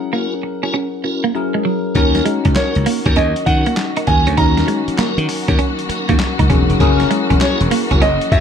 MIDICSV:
0, 0, Header, 1, 10, 480
1, 0, Start_track
1, 0, Tempo, 606061
1, 1548, Time_signature, 4, 2, 24, 8
1, 6655, End_track
2, 0, Start_track
2, 0, Title_t, "Grand piano"
2, 0, Program_c, 0, 0
2, 0, Note_on_c, 0, 78, 94
2, 1270, Note_off_c, 0, 78, 0
2, 2023, Note_on_c, 0, 73, 90
2, 2506, Note_on_c, 0, 75, 83
2, 2520, Note_off_c, 0, 73, 0
2, 2742, Note_on_c, 0, 78, 101
2, 2754, Note_off_c, 0, 75, 0
2, 3227, Note_on_c, 0, 80, 95
2, 3239, Note_off_c, 0, 78, 0
2, 3467, Note_on_c, 0, 82, 104
2, 3475, Note_off_c, 0, 80, 0
2, 5116, Note_off_c, 0, 82, 0
2, 5871, Note_on_c, 0, 73, 83
2, 6351, Note_on_c, 0, 75, 89
2, 6364, Note_off_c, 0, 73, 0
2, 6588, Note_on_c, 0, 76, 91
2, 6597, Note_off_c, 0, 75, 0
2, 6655, Note_off_c, 0, 76, 0
2, 6655, End_track
3, 0, Start_track
3, 0, Title_t, "Tonewheel organ"
3, 0, Program_c, 1, 16
3, 103, Note_on_c, 1, 61, 74
3, 105, Note_on_c, 1, 64, 70
3, 106, Note_on_c, 1, 66, 74
3, 108, Note_on_c, 1, 70, 89
3, 270, Note_off_c, 1, 61, 0
3, 271, Note_off_c, 1, 64, 0
3, 272, Note_off_c, 1, 66, 0
3, 273, Note_off_c, 1, 70, 0
3, 498, Note_on_c, 1, 61, 79
3, 500, Note_on_c, 1, 64, 69
3, 500, Note_on_c, 1, 66, 71
3, 503, Note_on_c, 1, 70, 89
3, 600, Note_off_c, 1, 61, 0
3, 601, Note_off_c, 1, 64, 0
3, 602, Note_off_c, 1, 66, 0
3, 603, Note_off_c, 1, 70, 0
3, 821, Note_on_c, 1, 61, 73
3, 823, Note_on_c, 1, 64, 63
3, 825, Note_on_c, 1, 66, 64
3, 826, Note_on_c, 1, 70, 81
3, 990, Note_off_c, 1, 61, 0
3, 991, Note_off_c, 1, 64, 0
3, 991, Note_off_c, 1, 66, 0
3, 992, Note_off_c, 1, 70, 0
3, 1541, Note_on_c, 1, 61, 82
3, 1543, Note_on_c, 1, 63, 83
3, 1544, Note_on_c, 1, 66, 76
3, 1547, Note_on_c, 1, 70, 101
3, 1771, Note_off_c, 1, 61, 0
3, 1772, Note_off_c, 1, 63, 0
3, 1772, Note_off_c, 1, 66, 0
3, 1774, Note_off_c, 1, 70, 0
3, 2022, Note_on_c, 1, 61, 81
3, 2024, Note_on_c, 1, 63, 71
3, 2025, Note_on_c, 1, 66, 72
3, 2027, Note_on_c, 1, 70, 88
3, 2190, Note_off_c, 1, 61, 0
3, 2191, Note_off_c, 1, 63, 0
3, 2191, Note_off_c, 1, 66, 0
3, 2192, Note_off_c, 1, 70, 0
3, 2419, Note_on_c, 1, 61, 73
3, 2420, Note_on_c, 1, 63, 70
3, 2423, Note_on_c, 1, 66, 70
3, 2424, Note_on_c, 1, 70, 92
3, 2521, Note_off_c, 1, 61, 0
3, 2521, Note_off_c, 1, 63, 0
3, 2523, Note_off_c, 1, 66, 0
3, 2523, Note_off_c, 1, 70, 0
3, 2742, Note_on_c, 1, 61, 72
3, 2744, Note_on_c, 1, 63, 67
3, 2745, Note_on_c, 1, 66, 71
3, 2747, Note_on_c, 1, 70, 80
3, 2910, Note_off_c, 1, 61, 0
3, 2911, Note_off_c, 1, 63, 0
3, 2912, Note_off_c, 1, 66, 0
3, 2912, Note_off_c, 1, 70, 0
3, 3222, Note_on_c, 1, 61, 74
3, 3224, Note_on_c, 1, 63, 72
3, 3226, Note_on_c, 1, 66, 71
3, 3228, Note_on_c, 1, 70, 87
3, 3390, Note_off_c, 1, 61, 0
3, 3391, Note_off_c, 1, 63, 0
3, 3392, Note_off_c, 1, 66, 0
3, 3393, Note_off_c, 1, 70, 0
3, 3463, Note_on_c, 1, 61, 87
3, 3463, Note_on_c, 1, 63, 84
3, 3465, Note_on_c, 1, 66, 78
3, 3467, Note_on_c, 1, 70, 95
3, 3692, Note_off_c, 1, 61, 0
3, 3692, Note_off_c, 1, 63, 0
3, 3693, Note_off_c, 1, 66, 0
3, 3694, Note_off_c, 1, 70, 0
3, 3943, Note_on_c, 1, 61, 77
3, 3945, Note_on_c, 1, 63, 73
3, 3946, Note_on_c, 1, 66, 75
3, 3947, Note_on_c, 1, 70, 84
3, 4110, Note_off_c, 1, 61, 0
3, 4111, Note_off_c, 1, 63, 0
3, 4112, Note_off_c, 1, 66, 0
3, 4112, Note_off_c, 1, 70, 0
3, 4341, Note_on_c, 1, 61, 77
3, 4342, Note_on_c, 1, 63, 66
3, 4343, Note_on_c, 1, 66, 72
3, 4345, Note_on_c, 1, 70, 83
3, 4442, Note_off_c, 1, 61, 0
3, 4442, Note_off_c, 1, 63, 0
3, 4443, Note_off_c, 1, 66, 0
3, 4444, Note_off_c, 1, 70, 0
3, 4664, Note_on_c, 1, 61, 79
3, 4666, Note_on_c, 1, 63, 69
3, 4667, Note_on_c, 1, 66, 68
3, 4668, Note_on_c, 1, 70, 78
3, 4831, Note_off_c, 1, 61, 0
3, 4832, Note_off_c, 1, 63, 0
3, 4832, Note_off_c, 1, 66, 0
3, 4833, Note_off_c, 1, 70, 0
3, 5385, Note_on_c, 1, 61, 89
3, 5387, Note_on_c, 1, 64, 80
3, 5388, Note_on_c, 1, 66, 82
3, 5390, Note_on_c, 1, 70, 94
3, 5613, Note_off_c, 1, 61, 0
3, 5614, Note_off_c, 1, 64, 0
3, 5614, Note_off_c, 1, 66, 0
3, 5615, Note_off_c, 1, 70, 0
3, 5864, Note_on_c, 1, 61, 82
3, 5865, Note_on_c, 1, 64, 72
3, 5866, Note_on_c, 1, 66, 78
3, 5868, Note_on_c, 1, 70, 87
3, 6031, Note_off_c, 1, 61, 0
3, 6031, Note_off_c, 1, 64, 0
3, 6032, Note_off_c, 1, 66, 0
3, 6033, Note_off_c, 1, 70, 0
3, 6262, Note_on_c, 1, 61, 81
3, 6264, Note_on_c, 1, 64, 73
3, 6265, Note_on_c, 1, 66, 74
3, 6267, Note_on_c, 1, 70, 88
3, 6362, Note_off_c, 1, 61, 0
3, 6363, Note_off_c, 1, 64, 0
3, 6364, Note_off_c, 1, 66, 0
3, 6365, Note_off_c, 1, 70, 0
3, 6585, Note_on_c, 1, 61, 75
3, 6588, Note_on_c, 1, 64, 70
3, 6590, Note_on_c, 1, 66, 64
3, 6591, Note_on_c, 1, 70, 77
3, 6655, Note_off_c, 1, 61, 0
3, 6655, Note_off_c, 1, 64, 0
3, 6655, Note_off_c, 1, 66, 0
3, 6655, Note_off_c, 1, 70, 0
3, 6655, End_track
4, 0, Start_track
4, 0, Title_t, "Tine electric piano"
4, 0, Program_c, 2, 4
4, 0, Control_c, 2, 64, 127
4, 0, Note_on_c, 2, 54, 65
4, 0, Note_on_c, 2, 61, 63
4, 0, Note_on_c, 2, 64, 58
4, 0, Note_on_c, 2, 68, 57
4, 0, Note_on_c, 2, 70, 72
4, 1036, Note_off_c, 2, 54, 0
4, 1039, Note_off_c, 2, 61, 0
4, 1041, Note_off_c, 2, 64, 0
4, 1044, Note_off_c, 2, 68, 0
4, 1047, Note_off_c, 2, 70, 0
4, 1066, Note_on_c, 2, 54, 62
4, 1070, Note_on_c, 2, 61, 57
4, 1071, Note_on_c, 2, 64, 52
4, 1073, Note_on_c, 2, 68, 57
4, 1076, Note_on_c, 2, 70, 70
4, 1535, Note_off_c, 2, 61, 0
4, 1545, Note_on_c, 2, 61, 79
4, 1547, Note_off_c, 2, 54, 0
4, 1549, Note_off_c, 2, 64, 0
4, 1549, Note_on_c, 2, 63, 68
4, 1550, Note_off_c, 2, 68, 0
4, 1552, Note_off_c, 2, 70, 0
4, 1554, Note_on_c, 2, 66, 67
4, 1558, Control_c, 2, 64, 0
4, 1562, Note_on_c, 2, 70, 83
4, 1706, Control_c, 2, 64, 127
4, 3435, Note_off_c, 2, 61, 0
4, 3437, Note_off_c, 2, 63, 0
4, 3439, Note_off_c, 2, 66, 0
4, 3443, Note_off_c, 2, 70, 0
4, 3464, Note_on_c, 2, 61, 71
4, 3471, Note_on_c, 2, 63, 62
4, 3478, Note_on_c, 2, 66, 65
4, 3483, Note_on_c, 2, 70, 78
4, 5114, Note_off_c, 2, 61, 0
4, 5118, Note_off_c, 2, 63, 0
4, 5121, Note_off_c, 2, 66, 0
4, 5124, Note_off_c, 2, 70, 0
4, 5148, Note_on_c, 2, 61, 62
4, 5151, Note_on_c, 2, 63, 56
4, 5154, Note_on_c, 2, 66, 55
4, 5158, Note_on_c, 2, 68, 63
4, 5374, Note_off_c, 2, 61, 0
4, 5383, Note_on_c, 2, 61, 86
4, 5385, Note_off_c, 2, 68, 0
4, 5388, Note_on_c, 2, 64, 70
4, 5390, Note_off_c, 2, 63, 0
4, 5391, Note_off_c, 2, 66, 0
4, 5395, Note_on_c, 2, 68, 76
4, 5398, Control_c, 2, 64, 0
4, 5401, Note_on_c, 2, 70, 90
4, 5521, Control_c, 2, 64, 127
4, 6655, Note_off_c, 2, 61, 0
4, 6655, Note_off_c, 2, 64, 0
4, 6655, Note_off_c, 2, 68, 0
4, 6655, Note_off_c, 2, 70, 0
4, 6655, End_track
5, 0, Start_track
5, 0, Title_t, "Clean electric guitar"
5, 0, Program_c, 3, 27
5, 102, Note_on_c, 3, 58, 81
5, 207, Note_off_c, 3, 58, 0
5, 501, Note_on_c, 3, 61, 70
5, 557, Note_off_c, 3, 61, 0
5, 584, Note_on_c, 3, 61, 84
5, 689, Note_off_c, 3, 61, 0
5, 982, Note_on_c, 3, 58, 79
5, 1038, Note_off_c, 3, 58, 0
5, 1223, Note_on_c, 3, 56, 75
5, 1278, Note_off_c, 3, 56, 0
5, 1306, Note_on_c, 3, 54, 69
5, 1411, Note_off_c, 3, 54, 0
5, 1786, Note_on_c, 3, 56, 80
5, 1891, Note_off_c, 3, 56, 0
5, 1943, Note_on_c, 3, 61, 72
5, 1999, Note_off_c, 3, 61, 0
5, 2267, Note_on_c, 3, 58, 81
5, 2371, Note_off_c, 3, 58, 0
5, 2424, Note_on_c, 3, 61, 82
5, 2479, Note_off_c, 3, 61, 0
5, 2508, Note_on_c, 3, 61, 84
5, 2612, Note_off_c, 3, 61, 0
5, 2903, Note_on_c, 3, 58, 72
5, 2959, Note_off_c, 3, 58, 0
5, 3144, Note_on_c, 3, 63, 80
5, 3199, Note_off_c, 3, 63, 0
5, 3381, Note_on_c, 3, 61, 69
5, 3438, Note_off_c, 3, 61, 0
5, 3465, Note_on_c, 3, 63, 80
5, 3570, Note_off_c, 3, 63, 0
5, 3705, Note_on_c, 3, 56, 81
5, 3810, Note_off_c, 3, 56, 0
5, 3947, Note_on_c, 3, 58, 79
5, 4051, Note_off_c, 3, 58, 0
5, 4343, Note_on_c, 3, 61, 70
5, 4399, Note_off_c, 3, 61, 0
5, 4425, Note_on_c, 3, 61, 91
5, 4530, Note_off_c, 3, 61, 0
5, 4823, Note_on_c, 3, 58, 84
5, 4879, Note_off_c, 3, 58, 0
5, 5063, Note_on_c, 3, 63, 77
5, 5119, Note_off_c, 3, 63, 0
5, 5146, Note_on_c, 3, 61, 80
5, 5250, Note_off_c, 3, 61, 0
5, 5628, Note_on_c, 3, 56, 87
5, 5732, Note_off_c, 3, 56, 0
5, 5784, Note_on_c, 3, 61, 81
5, 5839, Note_off_c, 3, 61, 0
5, 6109, Note_on_c, 3, 58, 90
5, 6213, Note_off_c, 3, 58, 0
5, 6266, Note_on_c, 3, 61, 76
5, 6321, Note_off_c, 3, 61, 0
5, 6348, Note_on_c, 3, 61, 80
5, 6452, Note_off_c, 3, 61, 0
5, 6655, End_track
6, 0, Start_track
6, 0, Title_t, "String section"
6, 0, Program_c, 4, 48
6, 1546, Note_on_c, 4, 51, 80
6, 1546, Note_on_c, 4, 58, 70
6, 1547, Note_on_c, 4, 54, 73
6, 1547, Note_on_c, 4, 61, 69
6, 1547, Note_on_c, 4, 66, 89
6, 5355, Note_off_c, 4, 51, 0
6, 5389, Note_on_c, 4, 52, 87
6, 6655, Note_off_c, 4, 52, 0
6, 6655, Note_off_c, 4, 54, 0
6, 6655, Note_off_c, 4, 58, 0
6, 6655, Note_off_c, 4, 61, 0
6, 6655, Note_off_c, 4, 66, 0
6, 6655, End_track
7, 0, Start_track
7, 0, Title_t, "Slap bass"
7, 0, Program_c, 5, 36
7, 1547, Note_on_c, 5, 39, 116
7, 1743, Note_off_c, 5, 39, 0
7, 1943, Note_on_c, 5, 37, 91
7, 2011, Note_off_c, 5, 37, 0
7, 2186, Note_on_c, 5, 37, 83
7, 2253, Note_off_c, 5, 37, 0
7, 2423, Note_on_c, 5, 39, 84
7, 2491, Note_off_c, 5, 39, 0
7, 2511, Note_on_c, 5, 39, 89
7, 2637, Note_off_c, 5, 39, 0
7, 2746, Note_on_c, 5, 51, 91
7, 2874, Note_off_c, 5, 51, 0
7, 3229, Note_on_c, 5, 39, 77
7, 3356, Note_off_c, 5, 39, 0
7, 3381, Note_on_c, 5, 38, 81
7, 3450, Note_off_c, 5, 38, 0
7, 3466, Note_on_c, 5, 39, 116
7, 3662, Note_off_c, 5, 39, 0
7, 4100, Note_on_c, 5, 51, 97
7, 4170, Note_off_c, 5, 51, 0
7, 4344, Note_on_c, 5, 39, 82
7, 4412, Note_off_c, 5, 39, 0
7, 4825, Note_on_c, 5, 39, 96
7, 4893, Note_off_c, 5, 39, 0
7, 5064, Note_on_c, 5, 37, 85
7, 5132, Note_off_c, 5, 37, 0
7, 5148, Note_on_c, 5, 28, 91
7, 5275, Note_off_c, 5, 28, 0
7, 5304, Note_on_c, 5, 29, 86
7, 5372, Note_off_c, 5, 29, 0
7, 5387, Note_on_c, 5, 30, 113
7, 5582, Note_off_c, 5, 30, 0
7, 5787, Note_on_c, 5, 28, 95
7, 5854, Note_off_c, 5, 28, 0
7, 6024, Note_on_c, 5, 28, 94
7, 6092, Note_off_c, 5, 28, 0
7, 6266, Note_on_c, 5, 30, 87
7, 6333, Note_off_c, 5, 30, 0
7, 6345, Note_on_c, 5, 30, 83
7, 6473, Note_off_c, 5, 30, 0
7, 6587, Note_on_c, 5, 42, 98
7, 6655, Note_off_c, 5, 42, 0
7, 6655, End_track
8, 0, Start_track
8, 0, Title_t, "Muted clean electric guitar strokes"
8, 343, Note_on_c, 9, 29, 43
8, 422, Note_off_c, 9, 29, 0
8, 824, Note_on_c, 9, 29, 45
8, 903, Note_off_c, 9, 29, 0
8, 1067, Note_on_c, 9, 29, 43
8, 1146, Note_off_c, 9, 29, 0
8, 1705, Note_on_c, 9, 29, 44
8, 1784, Note_off_c, 9, 29, 0
8, 2027, Note_on_c, 9, 29, 45
8, 2107, Note_off_c, 9, 29, 0
8, 2749, Note_on_c, 9, 29, 44
8, 2828, Note_off_c, 9, 29, 0
8, 3225, Note_on_c, 9, 29, 42
8, 3304, Note_off_c, 9, 29, 0
8, 3622, Note_on_c, 9, 29, 49
8, 3702, Note_off_c, 9, 29, 0
8, 4188, Note_on_c, 9, 29, 43
8, 4267, Note_off_c, 9, 29, 0
8, 4667, Note_on_c, 9, 29, 47
8, 4747, Note_off_c, 9, 29, 0
8, 4907, Note_on_c, 9, 29, 47
8, 4987, Note_off_c, 9, 29, 0
8, 5544, Note_on_c, 9, 29, 48
8, 5624, Note_off_c, 9, 29, 0
8, 5868, Note_on_c, 9, 29, 47
8, 5948, Note_off_c, 9, 29, 0
8, 6587, Note_on_c, 9, 29, 45
8, 6655, Note_off_c, 9, 29, 0
8, 6655, End_track
9, 0, Start_track
9, 0, Title_t, "Muted slap bass strokes"
9, 3864, Note_on_c, 9, 29, 46
9, 3943, Note_off_c, 9, 29, 0
9, 3948, Note_on_c, 9, 29, 48
9, 4027, Note_off_c, 9, 29, 0
9, 4667, Note_on_c, 9, 29, 48
9, 4746, Note_off_c, 9, 29, 0
9, 6655, End_track
10, 0, Start_track
10, 0, Title_t, "Drums"
10, 1546, Note_on_c, 9, 36, 104
10, 1546, Note_on_c, 9, 42, 65
10, 1625, Note_off_c, 9, 36, 0
10, 1625, Note_off_c, 9, 42, 0
10, 1702, Note_on_c, 9, 38, 69
10, 1703, Note_on_c, 9, 42, 53
10, 1781, Note_off_c, 9, 38, 0
10, 1782, Note_off_c, 9, 42, 0
10, 1786, Note_on_c, 9, 42, 77
10, 1866, Note_off_c, 9, 42, 0
10, 1940, Note_on_c, 9, 42, 56
10, 1943, Note_on_c, 9, 36, 83
10, 2019, Note_off_c, 9, 42, 0
10, 2022, Note_off_c, 9, 36, 0
10, 2024, Note_on_c, 9, 39, 82
10, 2025, Note_on_c, 9, 38, 108
10, 2026, Note_on_c, 9, 42, 78
10, 2103, Note_off_c, 9, 39, 0
10, 2104, Note_off_c, 9, 38, 0
10, 2105, Note_off_c, 9, 42, 0
10, 2180, Note_on_c, 9, 42, 47
10, 2259, Note_off_c, 9, 42, 0
10, 2266, Note_on_c, 9, 46, 73
10, 2345, Note_off_c, 9, 46, 0
10, 2420, Note_on_c, 9, 42, 52
10, 2422, Note_on_c, 9, 36, 93
10, 2499, Note_off_c, 9, 42, 0
10, 2501, Note_off_c, 9, 36, 0
10, 2503, Note_on_c, 9, 42, 68
10, 2582, Note_off_c, 9, 42, 0
10, 2662, Note_on_c, 9, 42, 53
10, 2742, Note_off_c, 9, 42, 0
10, 2745, Note_on_c, 9, 36, 91
10, 2747, Note_on_c, 9, 42, 72
10, 2824, Note_off_c, 9, 36, 0
10, 2826, Note_off_c, 9, 42, 0
10, 2901, Note_on_c, 9, 42, 60
10, 2980, Note_off_c, 9, 42, 0
10, 2982, Note_on_c, 9, 42, 75
10, 2985, Note_on_c, 9, 39, 92
10, 2986, Note_on_c, 9, 38, 127
10, 3062, Note_off_c, 9, 42, 0
10, 3064, Note_off_c, 9, 39, 0
10, 3065, Note_off_c, 9, 38, 0
10, 3140, Note_on_c, 9, 42, 56
10, 3220, Note_off_c, 9, 42, 0
10, 3224, Note_on_c, 9, 42, 65
10, 3227, Note_on_c, 9, 36, 100
10, 3303, Note_off_c, 9, 42, 0
10, 3307, Note_off_c, 9, 36, 0
10, 3381, Note_on_c, 9, 42, 52
10, 3460, Note_off_c, 9, 42, 0
10, 3466, Note_on_c, 9, 36, 106
10, 3466, Note_on_c, 9, 42, 71
10, 3545, Note_off_c, 9, 36, 0
10, 3545, Note_off_c, 9, 42, 0
10, 3623, Note_on_c, 9, 38, 69
10, 3624, Note_on_c, 9, 42, 51
10, 3703, Note_off_c, 9, 38, 0
10, 3703, Note_off_c, 9, 42, 0
10, 3709, Note_on_c, 9, 42, 70
10, 3788, Note_off_c, 9, 42, 0
10, 3864, Note_on_c, 9, 42, 53
10, 3943, Note_off_c, 9, 42, 0
10, 3947, Note_on_c, 9, 39, 85
10, 3948, Note_on_c, 9, 38, 107
10, 3949, Note_on_c, 9, 42, 80
10, 4026, Note_off_c, 9, 39, 0
10, 4027, Note_off_c, 9, 38, 0
10, 4028, Note_off_c, 9, 42, 0
10, 4103, Note_on_c, 9, 42, 46
10, 4182, Note_off_c, 9, 42, 0
10, 4188, Note_on_c, 9, 46, 77
10, 4267, Note_off_c, 9, 46, 0
10, 4342, Note_on_c, 9, 42, 54
10, 4344, Note_on_c, 9, 36, 99
10, 4421, Note_off_c, 9, 42, 0
10, 4423, Note_off_c, 9, 36, 0
10, 4426, Note_on_c, 9, 42, 74
10, 4505, Note_off_c, 9, 42, 0
10, 4584, Note_on_c, 9, 42, 57
10, 4663, Note_off_c, 9, 42, 0
10, 4669, Note_on_c, 9, 42, 76
10, 4749, Note_off_c, 9, 42, 0
10, 4822, Note_on_c, 9, 42, 59
10, 4825, Note_on_c, 9, 36, 92
10, 4901, Note_off_c, 9, 42, 0
10, 4904, Note_off_c, 9, 36, 0
10, 4904, Note_on_c, 9, 42, 81
10, 4906, Note_on_c, 9, 39, 99
10, 4907, Note_on_c, 9, 38, 119
10, 4983, Note_off_c, 9, 42, 0
10, 4985, Note_off_c, 9, 39, 0
10, 4987, Note_off_c, 9, 38, 0
10, 5063, Note_on_c, 9, 36, 94
10, 5063, Note_on_c, 9, 42, 64
10, 5142, Note_off_c, 9, 36, 0
10, 5142, Note_off_c, 9, 42, 0
10, 5147, Note_on_c, 9, 42, 69
10, 5149, Note_on_c, 9, 36, 95
10, 5227, Note_off_c, 9, 42, 0
10, 5228, Note_off_c, 9, 36, 0
10, 5304, Note_on_c, 9, 42, 48
10, 5384, Note_off_c, 9, 42, 0
10, 5387, Note_on_c, 9, 36, 99
10, 5387, Note_on_c, 9, 42, 66
10, 5466, Note_off_c, 9, 36, 0
10, 5467, Note_off_c, 9, 42, 0
10, 5543, Note_on_c, 9, 38, 68
10, 5544, Note_on_c, 9, 42, 51
10, 5622, Note_off_c, 9, 38, 0
10, 5623, Note_off_c, 9, 42, 0
10, 5629, Note_on_c, 9, 42, 71
10, 5708, Note_off_c, 9, 42, 0
10, 5785, Note_on_c, 9, 36, 82
10, 5785, Note_on_c, 9, 42, 56
10, 5864, Note_off_c, 9, 42, 0
10, 5865, Note_off_c, 9, 36, 0
10, 5867, Note_on_c, 9, 39, 88
10, 5868, Note_on_c, 9, 38, 113
10, 5869, Note_on_c, 9, 42, 80
10, 5946, Note_off_c, 9, 39, 0
10, 5948, Note_off_c, 9, 38, 0
10, 5948, Note_off_c, 9, 42, 0
10, 6024, Note_on_c, 9, 42, 46
10, 6103, Note_off_c, 9, 42, 0
10, 6109, Note_on_c, 9, 46, 74
10, 6188, Note_off_c, 9, 46, 0
10, 6265, Note_on_c, 9, 36, 97
10, 6265, Note_on_c, 9, 42, 55
10, 6344, Note_off_c, 9, 36, 0
10, 6345, Note_off_c, 9, 42, 0
10, 6349, Note_on_c, 9, 42, 72
10, 6429, Note_off_c, 9, 42, 0
10, 6505, Note_on_c, 9, 42, 52
10, 6585, Note_off_c, 9, 42, 0
10, 6587, Note_on_c, 9, 36, 97
10, 6589, Note_on_c, 9, 42, 77
10, 6655, Note_off_c, 9, 36, 0
10, 6655, Note_off_c, 9, 42, 0
10, 6655, End_track
0, 0, End_of_file